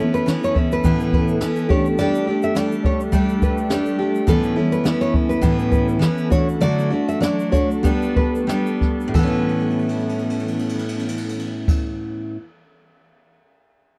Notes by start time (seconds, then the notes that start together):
Already playing: E3 B3 C#4 E4 A4
0.00 B3 C#4
0.14 B4, shaker
0.26 E3 B3 C#4 E4, snare, shaker
0.44 C#5, shaker
0.55 B3 C#4 E4, kick
0.72 B4, shaker
0.84 A2 E3 B3 C#4 E4, kick, shaker
1.00 shaker
1.13 B4, kick
1.28 shaker
1.41 E3 B3 C#4 E4, snare, shaker
1.56 shaker
1.69 G3 A3 D4 G4 C#5, kick
1.86 shaker
1.98 G3 A3 D4 G4 D5, shaker
2.15 shaker
2.27 A3 D4 G4
2.42 E5, shaker
2.55 G3 A3 D4 G4 D5, snare, shaker
2.72 shaker
2.85 C#5, kick
3.00 shaker
3.12 G3 A3 D4 G4, kick, shaker
3.29 shaker
3.42 B4, kick, shaker
3.58 shaker
3.70 G3 A3 D4 G4, snare, shaker
3.86 shaker
3.99 A3 D4 G4
4.15 shaker
4.27 A2 E3 B3 C#4 E4 A4, kick, shaker
4.43 shaker
4.56 B3 C#4 E4
4.72 B4, shaker
4.84 E3 B3 C#4 E4, snare, shaker
5.01 C#5, shaker
5.14 kick
5.29 B4, shaker
5.41 A2 E3 B3 C#4 E4, kick, shaker
5.59 shaker
5.72 B4, kick, shaker
5.88 shaker
5.99 E3 B3 C#4 E4, snare, shaker
6.18 shaker
6.30 A3 D4 F#4 C#5, kick, shaker
6.49 shaker
6.61 D3 F#3 A3 D4 F#4 D5, shaker
6.79 shaker
6.90 A3 D4 F#4
7.09 E5, shaker
7.21 F#3 A3 D4 F#4 D5, snare, shaker
7.39 shaker
7.52 A3 D4 F#4 C#5, kick, shaker
7.71 shaker
7.83 G3 B3 D4 A4, kick, shaker
8.02 shaker
8.16 B4, kick
8.35 shaker
8.47 G3 B3 D4 A4, snare, shaker
8.67 shaker
8.81 kick, snare
9.01 shaker
9.08 A2
9.14 E3 B3 C#4 A4, kick, crash
9.19 B3
9.23 C#4
9.27 E4
9.49 crash
9.59 ride
9.70 crash
9.79 ride
9.89 crash
10.00 ride
10.09 crash
10.19 ride
10.30 crash
10.39 ride
10.48 crash
10.59 ride
10.69 crash
10.79 ride
10.89 crash
10.99 ride
11.08 crash
11.18 ride
11.29 crash
11.39 ride
11.68 kick, crash